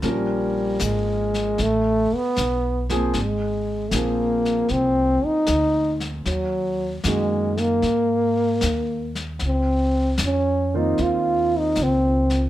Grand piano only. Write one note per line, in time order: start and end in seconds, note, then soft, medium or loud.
0.03 0.52 F3 soft
0.03 0.51 A#3 soft
0.03 0.52 C#4 soft
0.03 0.52 A#4 medium
2.90 3.12 F3 medium
2.90 3.12 A#3 medium
2.90 3.12 C4 medium
2.90 3.12 G#4 medium
3.93 5.13 F3 soft
3.93 5.13 A#3 soft
3.93 5.13 C4 soft
3.93 5.13 G#4 soft
7.04 7.83 D#3 soft
7.04 7.83 A#3 soft
7.04 7.83 C#4 soft
7.04 7.83 F#4 soft
10.74 10.96 D#3 medium
10.74 10.96 A#3 soft
10.74 10.96 C4 medium
10.74 10.97 F4 medium